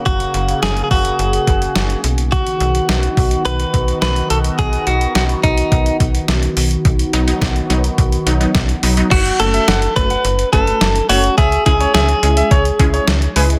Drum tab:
CC |----------------|----------------|----------------|----------------|
HH |xxxxxxoxxxxxxxxx|xxxxxxoxxxxxxxxx|xxxxxxxxxxxxxxox|xxxxxxxxxxxxxxox|
SD |----o-------o---|----o-------o---|----o-------o---|----o-------o---|
BD |o-----o---o-----|o-----o---o-----|o-----o-o-o-----|o---o---o---o---|

CC |x---------------|----------------|
HH |xxxxxxxxxxxxxxox|xxxxxxxxxxxxxxox|
SD |----o-------o---|----o-------o---|
BD |o-----o---o-----|o-o-----o-o-----|